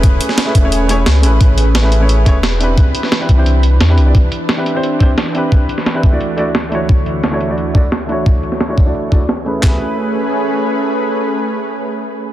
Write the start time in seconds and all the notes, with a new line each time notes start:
Already playing: E1 A3 C#4 E4 G#4 B4
0.03 kick, closed hi-hat
0.21 closed hi-hat
0.29 snare
0.38 snare, closed hi-hat
0.45 A3 C#4 E4 G#4 B4
0.55 E1, kick, closed hi-hat
0.62 A3 C#4 E4 G#4 C#5
0.72 closed hi-hat
0.88 A3 C#4 E4 G#4 C#5, closed hi-hat
1.06 C#2, snare, closed hi-hat
1.21 A1 A3 C#4 E4, closed hi-hat
1.25 G#4 B4
1.41 A1, kick, closed hi-hat
1.58 closed hi-hat
1.75 snare, closed hi-hat
1.82 A3 C#4 E4 G#4 B4
1.92 closed hi-hat
2.00 A3 C#4 E4 G#4 C#5
2.09 closed hi-hat
2.25 E1 A3 C#4 E4 G#4 C#5, kick, closed hi-hat
2.43 snare, closed hi-hat
2.58 C4 D4 E4, closed hi-hat
2.62 G4 B4
2.78 E3 D4, kick, closed hi-hat
2.95 closed hi-hat
3.03 snare
3.12 snare, closed hi-hat
3.19 C4 D4 E4 G4 B4
3.29 C2, kick, closed hi-hat
3.36 C4 D4 E4 G4 C5
3.46 closed hi-hat
3.63 closed hi-hat
3.80 E2, snare, closed hi-hat
3.88 C4 D4 E4 G4 B4
3.97 C2, closed hi-hat
4.05 C4 D4 E4 G4 D5
4.15 kick, closed hi-hat
4.32 closed hi-hat
4.49 snare, closed hi-hat
4.56 C4 D4 E4 G4 B4
4.66 closed hi-hat
4.74 C4 D4 E4 G4 C5
4.83 closed hi-hat
4.99 C4 D4 E4 G4 C5, kick, closed hi-hat
5.18 snare, closed hi-hat
5.32 C4 D4 E4, closed hi-hat
5.36 G4 B4
5.52 kick, closed hi-hat
5.69 closed hi-hat
5.78 snare
5.86 snare, closed hi-hat
5.93 C4 D4 E4 G4 B4
6.03 kick, closed hi-hat
6.11 A3 D4 E4 F#4 D5
6.21 D2 F#4 C#5, closed hi-hat
6.36 A3 D4 E4 F#4 D5, closed hi-hat
6.55 snare, closed hi-hat
6.69 A3 D4 E4, closed hi-hat
6.73 F#4 C#5
6.89 kick, closed hi-hat
7.06 closed hi-hat
7.24 snare, closed hi-hat
7.31 A3 D4 E4 F#4 C#5
7.41 closed hi-hat
7.48 A3 D4 E4 F#4 D5
7.58 closed hi-hat
7.74 A3 D4 E4 F#4 D5, kick, closed hi-hat
7.92 snare, closed hi-hat
8.06 A3 D4 E4, closed hi-hat
8.11 F#4 C#5
8.26 kick, closed hi-hat
8.43 closed hi-hat
8.52 snare
8.61 snare, closed hi-hat
8.68 A3 D4 E4 F#4 C#5
8.78 kick, closed hi-hat
8.85 A3 D4 E4 F#4 D5
8.95 closed hi-hat
9.10 A3 D4 E4 F#4 D5, kick, closed hi-hat
9.29 snare, closed hi-hat
9.45 A3 C#4 E4 G#4 B4, closed hi-hat
9.59 A3 C#4 G#4 B4
9.63 E4 G#4, kick, snare, clap
9.67 B4